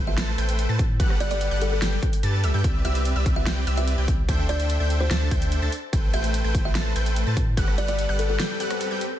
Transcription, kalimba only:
0.07 0.46 E5 medium
1.20 1.29 D5 medium
1.31 1.42 D5 loud
1.62 1.68 A4 medium
1.72 1.78 A4 medium
2.85 2.96 E5 medium
3.36 3.75 E5 loud
3.77 3.88 E5 medium
4.49 4.60 D5 medium
5.00 5.58 C5 loud
6.14 6.24 E5 loud
6.65 7.04 E5 loud
7.78 7.86 D5 loud
7.88 7.99 D5 loud
8.19 8.26 A4 medium
8.30 8.36 A4 medium

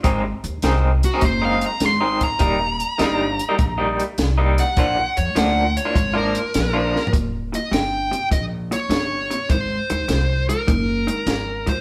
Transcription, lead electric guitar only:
1.05 1.23 F#4 medium
1.25 1.43 C5 medium
1.45 1.63 F5 medium
1.66 1.85 A#5 medium
1.85 2.22 C6 medium
2.24 3.96 A#5 medium
4.60 5.16 F#5 medium
5.18 5.36 C#5 medium
5.38 5.76 F#5 medium
5.77 6.15 C#5 medium
6.17 7.12 A#4 medium
7.55 7.72 D#5 medium
7.73 8.28 G5 medium
8.32 8.43 D#5 medium
8.73 9.50 C#5 medium
9.51 10.46 C5 medium
10.49 11.71 A#4 medium
11.69 11.81 C5 medium

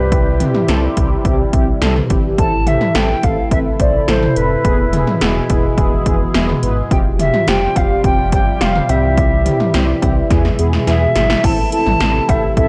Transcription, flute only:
0.00 0.68 B4 medium
2.38 2.68 A5 loud
2.67 2.97 E5 loud
2.95 3.25 G5 loud
3.23 3.51 F5 medium
3.52 3.58 E5 loud
3.80 4.10 D5 medium
4.08 4.38 C5 medium
4.36 5.21 B4 medium
6.91 6.97 G5 loud
7.19 7.49 E5 loud
7.48 7.78 G5 loud
7.76 8.04 F5 loud
8.04 8.31 G5 loud
8.33 8.62 G5 loud
8.61 8.91 F5 medium
8.89 9.74 E5 medium
10.87 11.46 E5 loud
11.44 11.72 A5 loud
11.72 12.30 A5 loud
12.29 12.56 E5 loud
12.57 12.68 E5 loud

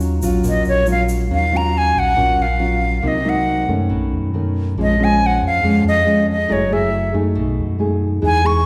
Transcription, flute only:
0.49 0.67 D#5 medium
0.68 0.87 C#5 medium
0.92 1.03 F5 medium
1.34 1.58 F5 medium
1.57 1.79 A#5 loud
1.78 2.00 G#5 loud
1.99 2.43 F#5 loud
2.42 3.09 F5 medium
3.08 3.31 D#5 medium
3.29 3.70 F#5 medium
4.82 5.05 D#5 loud
5.04 5.28 G#5 loud
5.26 5.45 F#5 medium
5.47 5.85 F5 medium
5.88 6.27 D#5 medium
6.32 6.54 D#5 medium
6.52 6.74 C#5 medium
6.73 7.15 E5 medium
8.26 8.48 G#5 loud
8.46 8.66 C#6 loud

